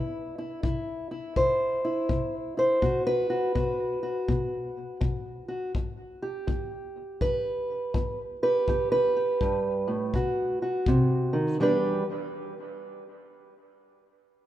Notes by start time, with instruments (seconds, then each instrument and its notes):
Already playing: steel-string acoustic guitar C3 E4
0.38 steel-string acoustic guitar E4
0.63 steel-string acoustic guitar C3 E4, kick
1.11 steel-string acoustic guitar E4
1.36 steel-string acoustic guitar C3 C5, kick
1.85 steel-string acoustic guitar E4
2.09 steel-string acoustic guitar C3, kick
2.57 steel-string acoustic guitar E4 C5
2.82 steel-string acoustic guitar B2 F#4, kick
3.07 steel-string acoustic guitar B4
3.30 steel-string acoustic guitar F#4
3.55 steel-string acoustic guitar B2 F#4, kick
4.03 steel-string acoustic guitar F#4
4.28 steel-string acoustic guitar B2, kick
5.01 steel-string acoustic guitar B2, kick
5.48 steel-string acoustic guitar F#4
5.75 steel-string acoustic guitar E2, kick
6.22 steel-string acoustic guitar G4
6.47 steel-string acoustic guitar E2, kick
7.21 steel-string acoustic guitar E2 B4, kick
7.94 steel-string acoustic guitar E2, kick
8.43 steel-string acoustic guitar G4 B4
8.68 steel-string acoustic guitar E2 G4, kick
8.92 steel-string acoustic guitar B4
9.16 steel-string acoustic guitar G4
9.41 steel-string acoustic guitar G2, kick
9.88 steel-string acoustic guitar A2
10.14 steel-string acoustic guitar B2 F#4, kick
10.62 steel-string acoustic guitar F#4
10.86 steel-string acoustic guitar C3, kick
11.33 steel-string acoustic guitar D#3
11.60 steel-string acoustic guitar E2 G3 D4 G4 B4